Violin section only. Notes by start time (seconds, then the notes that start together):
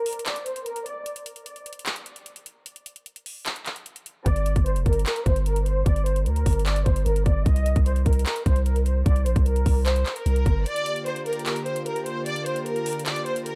Already playing: A#4
0.27 D5
0.46 C5
0.66 A#4
0.86 D5
4.26 D5
4.66 C5
4.86 A#4
5.05 A#4
5.26 C5
5.47 A#4
5.66 C5
5.86 D5
6.06 C5
6.26 A#4
6.67 D5
6.86 C5
7.06 A#4
7.26 D5
7.46 D#5
7.86 C5
8.06 A#4
8.27 A#4
8.46 C5
8.66 A#4
8.86 C5
9.06 D5
9.26 C5
9.46 A#4
9.86 C5
10.16 A#4
10.66 D5
11.06 C5
11.26 A#4
11.45 A#4
11.66 C5
11.86 A#4
12.06 C5
12.26 D5
12.46 C5
12.66 A#4
13.07 D5
13.26 C5
13.46 A#4